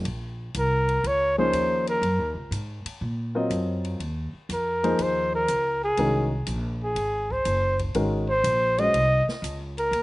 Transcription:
0.04 0.53 A#1 medium
0.04 ride medium
0.54 1.03 C2 medium
0.54 hi-hat pedal soft
0.54 ride medium
0.59 1.09 A#4 medium
0.89 ride soft
1.04 1.52 C#2 medium
1.04 1.38 C#5 medium
1.04 ride medium
1.38 2.00 F3 medium
1.38 2.00 A#3 medium
1.38 2.00 C#4 medium
1.38 2.00 D#4 medium
1.38 2.00 G#4 medium
1.38 1.85 C5 medium
1.53 2.01 D#2 medium
1.53 hi-hat pedal soft
1.53 ride medium
1.87 2.35 A#4 medium
1.87 ride soft
2.01 2.18 F#2 medium
2.01 ride medium
2.18 2.34 D#2 medium
2.35 2.50 C#2 medium
2.51 2.83 G#2 medium
2.51 hi-hat pedal soft
2.51 ride medium
2.85 muted upright bass stroke soft
2.85 ride medium
3.01 3.49 A#2 medium
3.35 3.97 F#3 medium
3.35 3.97 C4 medium
3.35 3.97 F4 medium
3.35 3.97 A#4 medium
3.35 3.98 D#5 medium
3.50 3.98 F#2 medium
3.50 hi-hat pedal soft
3.50 ride medium
3.84 ride soft
3.99 4.32 D#2 medium
3.99 ride soft
4.33 muted upright bass stroke soft
4.49 4.97 F2 medium
4.49 hi-hat pedal medium
4.49 ride medium
4.53 5.04 A#4 medium
4.83 5.45 F3 medium
4.83 5.45 A#3 medium
4.83 5.45 D#4 medium
4.83 5.45 G#4 medium
4.83 5.46 C5 medium
4.83 ride soft
4.99 5.47 D#2 medium
4.99 5.35 C5 medium
4.99 ride medium
5.35 5.80 A#4 medium
5.48 5.96 C#2 medium
5.48 hi-hat pedal medium
5.48 ride medium
5.84 6.29 G#4 medium
5.97 6.45 C2 medium
5.97 6.29 D#3 medium
5.97 6.29 G#3 soft
5.97 6.29 C#4 medium
5.97 6.29 F#4 medium
5.97 6.29 A#4 medium
5.97 ride medium
6.46 6.95 A#1 medium
6.46 hi-hat pedal soft
6.46 ride medium
6.84 7.33 G#4 medium
6.95 7.44 G#1 medium
6.95 ride medium
7.30 7.80 C5 medium
7.30 kick soft
7.45 7.93 F#1 medium
7.45 hi-hat pedal soft
7.45 ride medium
7.79 kick soft
7.79 ride soft
7.94 8.43 G#1 medium
7.94 8.25 D#3 medium
7.94 8.25 G#3 medium
7.94 8.25 C#4 medium
7.94 8.25 F#4 medium
7.94 8.26 A#4 medium
7.94 ride medium
8.30 8.81 C5 medium
8.44 8.92 A#1 medium
8.44 hi-hat pedal medium
8.44 ride medium
8.78 8.92 G#3 medium
8.78 8.92 C#4 medium
8.78 8.92 F#4 soft
8.78 8.92 C5 soft
8.78 8.92 D#5 medium
8.78 9.28 D#5 loud
8.78 ride soft
8.94 9.25 C2 medium
8.94 ride medium
9.27 muted upright bass stroke soft
9.27 snare soft
9.42 9.90 C#2 medium
9.42 hi-hat pedal medium
9.42 ride medium
9.78 10.03 A#4 medium
9.78 ride soft
9.91 10.03 D#2 medium
9.91 ride medium

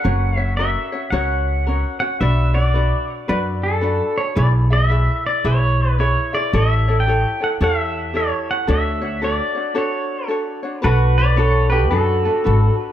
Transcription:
0.00 0.38 A#4 medium
0.00 0.39 F#5 medium
0.05 0.75 F#1 medium
0.05 0.38 C#4 medium
0.05 0.37 F#4 medium
0.05 0.36 C#5 medium
0.37 0.59 C#4 soft
0.37 0.58 F#4 soft
0.37 0.58 C#5 soft
0.37 0.57 E5 medium
0.57 0.93 C#4 medium
0.57 0.92 F#4 medium
0.57 0.93 A#4 medium
0.57 1.10 E5 medium
0.61 0.91 C#5 medium
0.92 1.12 C#4 soft
0.92 1.12 F#4 soft
0.92 1.12 C#5 soft
1.10 1.83 C#2 medium
1.10 1.67 C#4 medium
1.10 1.68 F#4 medium
1.10 1.66 A#4 medium
1.10 1.67 C#5 medium
1.10 1.99 F#5 medium
1.67 2.01 C#4 medium
1.67 2.00 F#4 medium
1.67 2.01 A#4 medium
1.67 1.99 C#5 medium
2.00 2.21 C#4 soft
2.00 2.20 F#4 soft
2.00 2.20 C#5 soft
2.00 2.20 F#5 medium
2.21 2.91 B1 medium
2.21 2.55 D4 medium
2.21 2.54 F#4 medium
2.21 2.55 B4 medium
2.21 2.53 D5 medium
2.21 2.56 E5 medium
2.54 2.74 D4 soft
2.54 2.74 F#4 soft
2.54 2.74 D5 soft
2.54 3.05 D5 medium
2.74 3.27 D4 medium
2.74 3.28 F#4 medium
2.74 3.28 B4 soft
2.74 3.28 D5 medium
3.28 3.99 F#2 medium
3.28 3.81 D4 medium
3.28 3.82 F#4 medium
3.28 3.81 B4 medium
3.28 3.38 B4 medium
3.28 3.83 D5 medium
3.63 4.19 A4 medium
3.81 4.36 D4 soft
3.81 4.36 F#4 medium
3.81 4.35 B4 medium
3.81 4.37 D5 medium
4.18 4.38 C#5 medium
4.36 5.07 B1 loud
4.36 4.70 E4 medium
4.36 4.70 G#4 medium
4.36 4.70 B4 medium
4.36 4.48 D5 medium
4.36 4.69 E5 medium
4.70 4.89 E4 soft
4.70 4.90 G#4 soft
4.70 4.90 E5 soft
4.70 5.26 E5 medium
4.90 5.45 E4 medium
4.90 5.44 G#4 medium
4.90 5.43 B4 medium
4.90 5.45 E5 medium
5.27 5.46 D5 medium
5.44 6.15 B1 medium
5.44 5.99 E4 medium
5.44 5.99 G#4 medium
5.44 5.97 B4 medium
5.44 5.99 C#5 medium
5.44 6.00 E5 medium
5.99 6.33 E4 medium
5.99 6.32 G#4 soft
5.99 6.32 B4 medium
5.99 6.34 C#5 medium
5.99 6.32 E5 medium
6.33 6.52 E4 soft
6.33 6.53 G#4 soft
6.33 6.54 D5 medium
6.33 6.53 E5 medium
6.53 7.23 A1 medium
6.53 6.87 E4 medium
6.53 6.87 G4 medium
6.53 6.87 A4 medium
6.53 6.86 C#5 medium
6.53 6.72 D#5 medium
6.72 6.99 E5 medium
6.88 7.06 E4 soft
6.88 7.07 A4 soft
6.88 7.07 C#5 medium
7.00 7.43 G5 medium
7.07 7.41 E4 medium
7.07 7.41 G4 medium
7.07 7.41 A4 medium
7.07 7.39 C#5 medium
7.40 7.60 E4 soft
7.40 7.60 A4 soft
7.40 7.60 C#5 soft
7.40 7.49 F#5 medium
7.61 8.31 E2 medium
7.61 8.13 E4 medium
7.61 8.13 G4 medium
7.61 8.15 A4 medium
7.61 8.15 C#5 medium
7.61 8.18 E5 medium
8.14 8.68 E4 medium
8.14 8.68 G4 medium
8.14 8.67 A4 medium
8.14 8.67 C#5 medium
8.14 8.50 C#5 medium
8.51 8.70 F#5 medium
8.67 9.38 D2 medium
8.67 9.02 D4 medium
8.67 9.01 F#4 medium
8.67 9.02 A4 medium
8.67 9.00 C#5 medium
8.67 9.25 E5 medium
9.02 9.21 D4 soft
9.02 9.22 F#4 soft
9.02 9.22 C#5 medium
9.22 9.56 D4 medium
9.22 9.55 F#4 medium
9.22 9.56 A4 medium
9.22 9.54 C#5 medium
9.22 9.74 D5 medium
9.55 9.74 D4 soft
9.55 9.74 F#4 soft
9.55 9.75 C#5 soft
9.75 10.29 D4 medium
9.75 10.30 F#4 medium
9.75 10.28 A4 medium
9.75 10.28 C#5 medium
9.75 10.27 C#5 medium
10.28 10.63 D4 medium
10.28 10.63 F#4 medium
10.28 10.62 A4 medium
10.28 10.62 C#5 medium
10.63 10.82 D4 soft
10.63 10.82 F#4 soft
10.63 10.81 C#5 soft
10.82 11.92 B1 medium
10.82 11.36 D4 medium
10.82 11.37 F#4 medium
10.82 11.16 F#4 medium
10.82 11.38 A4 medium
10.82 11.35 B4 medium
10.82 11.18 B4 medium
11.18 11.37 B4 medium
11.18 11.38 D5 medium
11.36 11.70 D4 medium
11.36 11.70 F#4 medium
11.36 11.69 A4 medium
11.36 11.70 A4 medium
11.36 11.69 B4 medium
11.36 11.69 C#5 medium
11.70 11.90 D4 soft
11.70 11.90 F#4 soft
11.70 11.90 G4 medium
11.70 11.90 A4 medium
11.70 11.89 B4 medium
11.90 12.27 F#2 medium
11.90 12.25 D4 medium
11.90 12.25 F#4 medium
11.90 12.76 F#4 medium
11.90 12.75 A4 medium
11.90 12.24 A4 medium
11.90 12.25 B4 medium
12.25 12.44 D4 soft
12.25 12.44 F#4 soft
12.25 12.44 A4 soft
12.44 12.68 G#1 medium
12.44 12.92 D4 medium
12.44 12.92 F#4 medium
12.44 12.92 A4 medium
12.44 12.92 B4 medium

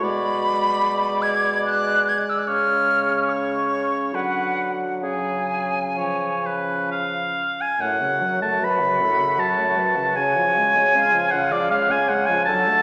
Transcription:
0.00 2.15 B2 medium
0.00 3.84 G#3 medium
0.00 2.19 F#4 medium
0.00 1.23 B5 loud
0.04 2.49 D5 medium
1.22 1.63 G#6 medium
1.65 2.10 F#6 loud
2.09 2.20 G#6 medium
2.19 2.31 F#6 medium
2.30 2.40 E6 medium
2.39 2.49 F#6 medium
2.47 4.11 C#3 medium
2.47 4.15 C#4 medium
2.47 4.16 C#5 medium
2.47 3.31 F6 loud
3.29 4.16 C#6 medium
4.13 5.05 D3 medium
4.13 5.99 F#3 soft
4.13 5.02 F#4 medium
4.13 4.72 B4 soft
4.13 4.72 F#5 medium
5.02 7.46 C#3 medium
5.02 7.42 C#4 medium
5.02 5.84 G#4 soft
5.02 6.86 G#5 medium
5.97 7.46 F3 soft
5.97 6.47 C#5 medium
6.46 6.91 B4 medium
6.92 7.63 F5 medium
7.61 7.83 G#5 medium
7.80 10.12 F#2 medium
7.80 8.02 A2 medium
7.80 10.97 F#4 medium
7.80 8.41 F#5 medium
8.00 8.23 C#3 medium
8.21 8.43 F#3 medium
8.42 8.61 A3 medium
8.42 8.65 A5 medium
8.60 8.82 F#3 medium
8.60 9.02 B4 medium
8.64 9.41 B5 medium
8.80 9.02 C#3 medium
9.00 9.21 A2 soft
9.00 9.41 A4 medium
9.19 9.39 C#3 medium
9.38 9.60 F#3 medium
9.38 9.80 C#5 medium
9.38 10.18 A5 medium
9.58 9.79 A3 soft
9.77 9.98 F#3 soft
9.77 10.17 B4 medium
9.97 10.16 C#3 soft
10.16 10.38 C#3 medium
10.16 12.43 C#3 medium
10.16 10.98 C#5 medium
10.16 11.33 G#5 medium
10.36 10.58 F3 medium
10.57 10.78 G#3 medium
10.76 10.97 C#4 medium
10.96 11.16 G#3 medium
10.96 12.48 F4 medium
10.96 11.74 F5 medium
11.14 11.35 F3 medium
11.31 11.54 C#3 medium
11.31 11.54 F#5 medium
11.52 11.72 F3 medium
11.52 11.70 D5 medium
11.71 11.91 G#3 medium
11.71 12.48 C#5 medium
11.71 11.93 F5 medium
11.90 12.11 C#4 medium
11.90 12.11 G#5 medium
12.09 12.31 G#3 medium
12.09 12.27 F#5 medium
12.26 12.48 F3 medium
12.26 12.45 G#5 medium
12.45 12.82 D3 medium
12.45 12.69 F#3 medium
12.45 12.82 F#4 medium
12.45 12.82 A4 medium
12.45 12.82 A5 loud
12.68 12.82 A3 medium

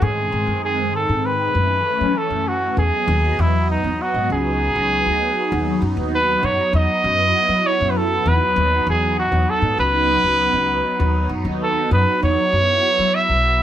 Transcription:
0.01 0.27 G#2 medium
0.01 1.51 D#3 medium
0.01 1.51 G#3 medium
0.01 1.51 C4 medium
0.01 0.63 G#4 medium
0.32 0.45 G#2 medium
0.47 0.93 F#2 medium
0.65 0.92 G#4 medium
0.93 1.06 G#2 medium
0.93 1.27 A4 medium
1.09 1.47 G#2 medium
1.25 2.19 B4 medium
1.54 1.80 F#2 medium
1.54 2.74 E3 medium
1.54 2.74 A3 medium
1.54 2.74 C#4 medium
2.01 2.13 F#3 medium
2.18 2.49 A4 medium
2.30 2.69 F#2 medium
2.48 2.78 F#4 medium
2.76 2.90 E2 medium
2.76 4.26 F#3 medium
2.76 4.26 B3 medium
2.76 3.42 G#4 medium
2.76 4.26 D#5 medium
3.08 3.33 D#2 medium
3.39 3.76 E2 medium
3.39 3.70 E4 medium
3.71 4.03 D#4 medium
3.84 3.97 E2 medium
4.02 4.31 F#4 medium
4.14 4.27 G#2 medium
4.30 4.68 C#2 medium
4.30 5.49 F#3 medium
4.30 5.49 B3 medium
4.30 5.49 D#4 medium
4.30 5.83 G#4 loud
4.76 5.01 C#2 medium
5.06 5.31 D2 medium
5.52 5.77 D#2 medium
5.52 7.01 F#3 medium
5.52 7.01 B3 medium
5.52 7.01 D#4 medium
5.82 5.94 F#2 medium
5.97 6.35 D#2 medium
6.15 6.46 B4 medium
6.43 6.56 F#2 medium
6.43 6.74 C#5 medium
6.73 6.86 E2 medium
6.73 7.68 D#5 loud
7.04 7.29 F#2 medium
7.04 8.23 F#3 medium
7.04 8.24 B3 medium
7.04 8.24 E4 medium
7.49 7.62 F#3 medium
7.66 7.92 C#5 medium
7.81 8.18 F#2 medium
7.90 7.99 B4 medium
7.97 8.29 A4 medium
8.26 8.38 E2 medium
8.26 9.76 F#3 medium
8.26 9.76 B3 medium
8.26 9.75 D#4 medium
8.26 8.88 B4 medium
8.56 8.82 D#2 medium
8.87 9.25 E2 medium
8.87 9.17 G#4 medium
9.19 9.51 F#4 medium
9.32 9.45 E2 medium
9.50 9.79 A4 medium
9.62 9.75 G#2 medium
9.78 10.16 C#2 medium
9.78 10.98 F#3 medium
9.78 10.98 B3 medium
9.78 10.98 D#4 medium
9.78 11.31 B4 loud
10.24 10.49 C#2 medium
10.53 10.79 C#2 medium
10.99 11.25 D#2 medium
10.99 12.49 F#3 medium
10.99 12.49 B3 medium
10.99 12.49 D#4 medium
11.29 11.43 F#2 medium
11.45 11.83 D#2 medium
11.63 11.91 A4 medium
11.91 12.04 F#2 medium
11.91 12.21 B4 medium
12.23 12.35 E2 medium
12.23 13.16 C#5 loud
12.52 12.78 F#2 medium
12.52 13.63 F#3 medium
12.52 13.63 B3 medium
12.52 13.63 E4 medium
12.99 13.11 F#3 medium
13.15 13.63 E5 loud
13.30 13.63 B1 medium

